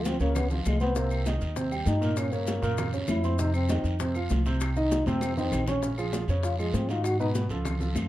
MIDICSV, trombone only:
0, 0, Header, 1, 2, 480
1, 0, Start_track
1, 0, Tempo, 304105
1, 1520, Time_signature, 4, 2, 24, 8
1, 12760, End_track
2, 0, Start_track
2, 0, Title_t, "Trombone"
2, 0, Program_c, 0, 57
2, 88, Note_on_c, 0, 60, 87
2, 311, Note_off_c, 0, 60, 0
2, 320, Note_on_c, 0, 58, 88
2, 563, Note_on_c, 0, 59, 90
2, 587, Note_off_c, 0, 58, 0
2, 787, Note_off_c, 0, 59, 0
2, 797, Note_on_c, 0, 51, 49
2, 1044, Note_on_c, 0, 56, 84
2, 1049, Note_off_c, 0, 51, 0
2, 1262, Note_off_c, 0, 56, 0
2, 1272, Note_on_c, 0, 59, 101
2, 1521, Note_on_c, 0, 58, 82
2, 1545, Note_off_c, 0, 59, 0
2, 2000, Note_off_c, 0, 58, 0
2, 2951, Note_on_c, 0, 63, 89
2, 3429, Note_on_c, 0, 61, 80
2, 3453, Note_off_c, 0, 63, 0
2, 3662, Note_on_c, 0, 58, 69
2, 3686, Note_off_c, 0, 61, 0
2, 4389, Note_off_c, 0, 58, 0
2, 4877, Note_on_c, 0, 64, 94
2, 5344, Note_on_c, 0, 63, 80
2, 5368, Note_off_c, 0, 64, 0
2, 5575, Note_off_c, 0, 63, 0
2, 5585, Note_on_c, 0, 60, 88
2, 6259, Note_off_c, 0, 60, 0
2, 7522, Note_on_c, 0, 63, 85
2, 7991, Note_on_c, 0, 60, 101
2, 8015, Note_off_c, 0, 63, 0
2, 8469, Note_off_c, 0, 60, 0
2, 8478, Note_on_c, 0, 60, 88
2, 8924, Note_off_c, 0, 60, 0
2, 8959, Note_on_c, 0, 61, 100
2, 9404, Note_off_c, 0, 61, 0
2, 10164, Note_on_c, 0, 65, 80
2, 10384, Note_off_c, 0, 65, 0
2, 10400, Note_on_c, 0, 56, 67
2, 10639, Note_on_c, 0, 60, 83
2, 10663, Note_off_c, 0, 56, 0
2, 10881, Note_on_c, 0, 65, 102
2, 10905, Note_off_c, 0, 60, 0
2, 11128, Note_on_c, 0, 66, 92
2, 11152, Note_off_c, 0, 65, 0
2, 11348, Note_off_c, 0, 66, 0
2, 11358, Note_on_c, 0, 63, 90
2, 11502, Note_off_c, 0, 63, 0
2, 12760, End_track
0, 0, End_of_file